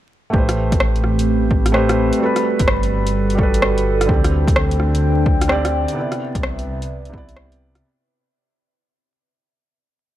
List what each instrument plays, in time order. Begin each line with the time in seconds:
0.30 detuned saw bass A1, felt piano A3 G4, kick
0.34 analog synth pad A3, felt piano B4 C5
0.49 analog synth pad B5, cross-stick, closed hi-hat
0.54 analog synth pad G4
0.72 analog synth pad C4, kick, closed hi-hat
0.80 cross-stick
0.96 closed hi-hat
1.04 detuned saw bass A1, cross-stick
1.19 closed hi-hat
1.51 kick
1.66 cross-stick, closed hi-hat
1.72 felt piano A3 G4 B4, cross-stick
1.76 felt piano C5
1.89 cross-stick, closed hi-hat
2.13 closed hi-hat
2.17 felt piano G3 F#4
2.22 analog synth pad G3, felt piano A4 B4
2.36 cross-stick, closed hi-hat
2.41 analog synth pad F#4 A4
2.59 detuned saw bass G1, kick, closed hi-hat
2.68 cross-stick
2.83 closed hi-hat
2.92 detuned saw bass G1
3.07 closed hi-hat
3.30 closed hi-hat
3.35 detuned saw bass G1, felt piano G3 F#4, kick
3.40 felt piano A4 B4
3.54 closed hi-hat
3.62 cross-stick
3.78 closed hi-hat
4.01 cross-stick, closed hi-hat
4.05 detuned saw bass D2, felt piano D3 C4, analog synth pad D4, kick
4.11 felt piano G4 D5
4.16 analog synth pad C5
4.24 cross-stick, closed hi-hat
4.30 analog synth pad G5
4.48 kick, closed hi-hat
4.56 cross-stick
4.71 closed hi-hat
4.79 detuned saw bass D2, cross-stick
4.95 closed hi-hat
5.26 kick
5.41 cross-stick, closed hi-hat
5.48 felt piano D3 C4 G4, cross-stick
5.52 felt piano D5
5.65 cross-stick, closed hi-hat
5.88 closed hi-hat
5.93 felt piano C3 B3
5.98 felt piano E4 D5
6.11 analog synth pad B4, cross-stick, closed hi-hat
6.15 analog synth pad E5
6.26 analog synth pad D5
6.35 detuned saw bass C2, kick, closed hi-hat
6.43 cross-stick
6.59 closed hi-hat
6.67 detuned saw bass C2
6.82 closed hi-hat
7.05 closed hi-hat
7.09 felt piano C3 B3
7.13 detuned saw bass C2, felt piano E4, kick
7.18 felt piano D5
7.29 closed hi-hat
7.36 cross-stick
7.52 closed hi-hat
7.75 cross-stick, closed hi-hat